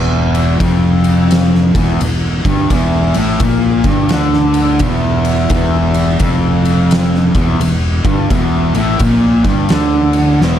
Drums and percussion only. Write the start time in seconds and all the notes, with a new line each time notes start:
0.35 ride
0.60 kick, ride
1.04 ride
1.31 snare, ride
1.55 snare
1.75 kick, ride
2.01 ride
2.45 kick, ride
2.70 kick, ride
3.14 ride
3.40 kick, ride
3.84 kick, ride
4.09 snare, ride
4.33 snare
4.54 ride
4.79 kick, ride
5.25 ride
5.50 kick, ride
5.94 ride
6.19 kick, ride
6.65 ride
6.91 snare, ride
7.15 snare
7.35 kick, ride
7.61 ride
8.05 kick, ride
8.30 kick, ride
8.75 ride
8.99 kick, ride
9.44 kick, ride
9.69 snare, ride
10.13 ride
10.42 snare